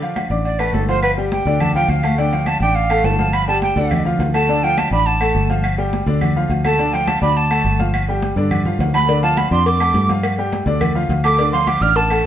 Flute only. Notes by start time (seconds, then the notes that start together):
0.45 D5
0.59 B4
0.74 A4
0.88 C5
1.03 B4
1.32 G5
1.61 A5
1.75 G5
1.89 F5
2.18 G5
2.47 A5
2.61 G5
2.75 F5
3.05 A5
3.33 B5
3.48 A5
3.63 G5
4.34 A5
4.63 G5
4.78 A5
4.92 B5
5.06 A5
6.65 A5
6.93 G5
7.08 A5
7.22 B5
7.37 A5
8.95 B5
9.23 A5
9.37 B5
9.51 C6
9.67 D6
11.24 D6
11.53 C6
11.67 D6
11.82 F6
11.96 A5